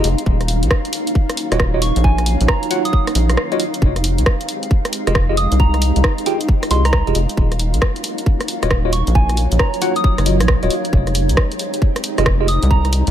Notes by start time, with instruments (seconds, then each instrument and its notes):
Already playing: string machine G#3 C4 D#4 G4, ambient pad G#3 D#4 F5
0.04 analog synth bass F1, open hi-hat
0.18 closed hi-hat
0.26 analog synth bass D#1, string machine A#3 C#4 F4 F#4, kick
0.41 cross-stick, closed hi-hat
0.48 open hi-hat
0.55 ambient pad F#3
0.63 analog synth bass A#1, closed hi-hat
0.71 kick, cross-stick
0.85 closed hi-hat
0.93 open hi-hat
1.07 closed hi-hat
1.15 kick
1.26 ambient pad C#5, cross-stick, closed hi-hat
1.37 open hi-hat
1.52 analog synth bass D#1, tine electric piano F4 F#4 C#5 D#5, cross-stick, closed hi-hat
1.60 kick, cross-stick
1.74 tine electric piano F4 F#4 C#5 D#5
1.82 synth bell C#6, open hi-hat
1.96 analog synth bass A#1, closed hi-hat
2.04 synth bell G#5, kick
2.18 cross-stick, closed hi-hat
2.26 open hi-hat
2.41 analog synth bass A#1, closed hi-hat
2.48 synth bell A#5, kick, cross-stick
2.63 closed hi-hat
2.71 tine electric piano F4 F#4 C#5 F#5, open hi-hat
2.85 synth bell D#6, closed hi-hat
2.93 synth bell D#6, kick
3.07 cross-stick, open hi-hat
3.15 analog synth bass A#1, open hi-hat
3.30 cross-stick, closed hi-hat
3.37 cross-stick
3.52 tine electric piano F4 F#4 C#5 D#5, closed hi-hat
3.60 open hi-hat
3.74 closed hi-hat
3.82 analog synth bass F1, string machine G#3 C4 D#4 G4, kick
3.96 cross-stick, closed hi-hat
4.04 ambient pad G#3, open hi-hat
4.18 analog synth bass C2, closed hi-hat
4.26 kick, cross-stick
4.41 closed hi-hat
4.49 open hi-hat
4.63 closed hi-hat
4.71 kick
4.85 cross-stick, closed hi-hat
4.93 open hi-hat
5.07 analog synth bass F1, tine electric piano F4 G4 G#4 D#5, cross-stick, closed hi-hat
5.15 kick, cross-stick
5.29 tine electric piano F4 G4 G#4 D#5
5.37 synth bell D#6, open hi-hat
5.52 analog synth bass C2, closed hi-hat
5.60 synth bell A#5, kick
5.74 cross-stick, closed hi-hat
5.82 open hi-hat
5.96 analog synth bass C2, closed hi-hat
6.04 kick, cross-stick
6.18 closed hi-hat
6.26 tine electric piano F4 G4 G#4 G5, open hi-hat
6.41 closed hi-hat
6.49 kick
6.63 cross-stick, open hi-hat
6.71 analog synth bass C2, tine electric piano F4 G4 G#4 D#5, synth bell C6, open hi-hat
6.85 synth bell A#5, cross-stick, closed hi-hat
6.93 synth bell A#5, kick, cross-stick
7.07 analog synth bass F1, tine electric piano F4 G4 G#4 D#5, closed hi-hat
7.15 analog synth bass F1, open hi-hat
7.29 closed hi-hat
7.37 analog synth bass D#1, string machine A#3 C#4 F4 F#4, kick
7.51 ambient pad F#3, cross-stick, closed hi-hat
7.59 open hi-hat
7.74 analog synth bass A#1, closed hi-hat
7.82 kick, cross-stick
7.96 closed hi-hat
8.04 open hi-hat
8.18 closed hi-hat
8.26 ambient pad C#5, kick
8.41 cross-stick, closed hi-hat
8.48 open hi-hat
8.63 analog synth bass D#1, tine electric piano F4 F#4 C#5 D#5, cross-stick, closed hi-hat
8.71 kick, cross-stick
8.85 tine electric piano F4 F#4 C#5 D#5
8.93 synth bell C#6, open hi-hat
9.07 analog synth bass A#1, closed hi-hat
9.15 synth bell G#5, kick
9.29 cross-stick, closed hi-hat
9.37 open hi-hat
9.52 analog synth bass A#1, closed hi-hat
9.59 synth bell A#5, kick, cross-stick
9.74 closed hi-hat
9.82 tine electric piano F4 F#4 C#5 F#5, open hi-hat
9.96 synth bell D#6, closed hi-hat
10.04 kick
10.18 analog synth bass F#1, cross-stick, open hi-hat
10.26 tine electric piano F4 F#4 C#5 D#5, open hi-hat
10.40 analog synth bass A#1, cross-stick, closed hi-hat
10.48 kick, cross-stick
10.63 analog synth bass D#1, tine electric piano F4 F#4 C#5 D#5, closed hi-hat
10.70 open hi-hat
10.85 closed hi-hat
10.93 analog synth bass F1, string machine G#3 C4 D#4 G4, ambient pad D#4, kick
11.07 cross-stick, closed hi-hat
11.15 open hi-hat
11.29 analog synth bass C2, closed hi-hat
11.37 kick, cross-stick
11.52 ambient pad G#3, closed hi-hat
11.59 open hi-hat
11.74 closed hi-hat
11.82 kick
11.96 cross-stick, closed hi-hat
12.04 open hi-hat
12.18 analog synth bass F1, tine electric piano F4 G4 G#4 D#5, cross-stick, closed hi-hat
12.26 kick, cross-stick
12.41 tine electric piano F4 G4 G#4 D#5
12.48 synth bell D#6, open hi-hat
12.63 analog synth bass C2, closed hi-hat
12.70 synth bell A#5, kick
12.85 cross-stick, closed hi-hat
12.93 open hi-hat
13.07 analog synth bass C2, closed hi-hat